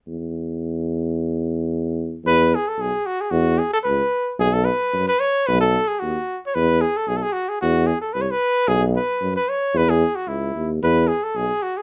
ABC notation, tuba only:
X:1
M:2/4
L:1/8
Q:"Swing 16ths" 1/4=112
K:E
V:1 name="Tuba" clef=bass
E,,4- | E,,4 | E,,2 B,,, z | E,,2 C,, z |
B,,,2 F,, z | B,,,2 D,, z | E,,2 B,,, z | E,,2 =C,, z |
B,,,2 F,, z | E,,2 C,, D,, | E,,2 B,,, z |]